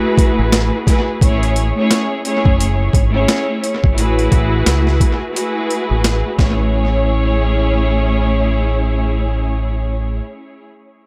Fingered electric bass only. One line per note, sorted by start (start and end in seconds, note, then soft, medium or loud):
0.39 0.70 A1 medium
1.21 1.71 A1 loud
2.45 2.88 F#1 medium
2.93 3.24 G#1 medium
3.84 3.96 G#1 medium
3.98 4.28 A1 loud
4.32 4.63 A1 loud
4.67 4.97 C#2 loud
5.91 6.21 A1 medium
6.39 10.20 A1 loud